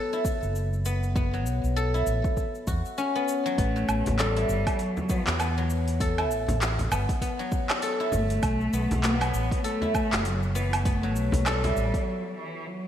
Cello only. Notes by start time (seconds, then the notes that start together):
3.58 A3
4.18 G3
4.79 F#3
5.10 E3
8.13 A3
9.03 B3
9.64 A3
10.25 F#3
10.55 E3
10.85 A3
11.46 G3
12.07 F#3
12.37 E3
12.67 F#3